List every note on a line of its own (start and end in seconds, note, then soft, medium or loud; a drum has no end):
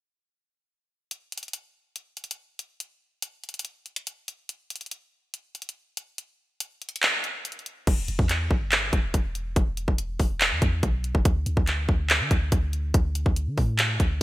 1.11 closed hi-hat medium
1.32 closed hi-hat medium
1.38 closed hi-hat medium
1.43 closed hi-hat medium
1.48 closed hi-hat soft
1.53 closed hi-hat medium
1.96 closed hi-hat medium
2.17 closed hi-hat soft
2.24 closed hi-hat medium
2.31 closed hi-hat medium
2.59 closed hi-hat medium
2.80 closed hi-hat medium
3.22 closed hi-hat medium
3.44 closed hi-hat soft
3.49 closed hi-hat soft
3.54 closed hi-hat medium
3.59 closed hi-hat medium
3.65 closed hi-hat medium
3.86 closed hi-hat soft
3.96 closed hi-hat medium
4.07 closed hi-hat medium
4.28 closed hi-hat medium
4.49 closed hi-hat medium
4.70 closed hi-hat medium
4.76 closed hi-hat medium
4.81 closed hi-hat medium
4.86 closed hi-hat soft
4.91 closed hi-hat medium
5.34 closed hi-hat medium
5.55 closed hi-hat soft
5.62 closed hi-hat medium
5.69 closed hi-hat medium
5.97 closed hi-hat medium
6.18 closed hi-hat medium
6.60 closed hi-hat medium
6.82 closed hi-hat medium
6.89 closed hi-hat medium
6.96 closed hi-hat medium
7.03 clap loud
7.03 closed hi-hat medium
7.24 closed hi-hat medium
7.45 closed hi-hat medium
7.52 closed hi-hat medium
7.59 closed hi-hat soft
7.66 closed hi-hat medium
7.87 8.08 E1 loud
7.87 kick loud
7.87 closed hi-hat medium
7.87 crash loud
8.08 8.18 E1 loud
8.08 closed hi-hat medium
8.19 8.49 E2 loud
8.19 kick medium
8.29 clap medium
8.29 closed hi-hat medium
8.51 8.91 G1 loud
8.51 kick medium
8.72 clap loud
8.72 closed hi-hat medium
8.93 9.13 E1 loud
8.93 kick loud
8.93 closed hi-hat medium
9.14 9.55 E1 loud
9.14 kick medium
9.14 closed hi-hat medium
9.35 closed hi-hat medium
9.56 9.87 E1 loud
9.56 kick loud
9.56 closed hi-hat medium
9.77 closed hi-hat medium
9.88 10.18 E1 loud
9.88 kick medium
9.98 closed hi-hat medium
10.19 10.53 E1 loud
10.19 kick medium
10.19 open hi-hat medium
10.41 clap loud
10.41 closed hi-hat medium
10.51 10.61 E2 loud
10.62 10.82 E2 loud
10.62 kick loud
10.62 closed hi-hat medium
10.83 11.13 B1 loud
10.83 kick loud
10.83 closed hi-hat medium
11.04 closed hi-hat medium
11.15 11.25 E1 loud
11.15 kick loud
11.25 11.46 D2 loud
11.25 kick loud
11.25 closed hi-hat medium
11.46 11.57 D2 loud
11.46 closed hi-hat medium
11.57 11.87 D2 loud
11.57 kick medium
11.67 clap medium
11.67 closed hi-hat medium
11.89 12.22 D2 loud
11.89 kick medium
12.10 clap loud
12.10 closed hi-hat medium
12.20 12.30 D3 loud
12.31 12.51 D2 loud
12.31 kick loud
12.31 closed hi-hat medium
12.52 12.93 D2 loud
12.52 kick medium
12.52 closed hi-hat medium
12.73 closed hi-hat medium
12.94 13.25 D2 loud
12.94 kick loud
12.94 closed hi-hat medium
13.15 closed hi-hat medium
13.26 13.49 D2 loud
13.26 kick medium
13.36 closed hi-hat medium
13.47 13.57 D3 loud
13.58 13.98 A2 loud
13.58 kick medium
13.58 open hi-hat medium
13.79 clap loud
13.79 closed hi-hat medium
14.00 14.20 D2 loud
14.00 kick loud
14.00 closed hi-hat medium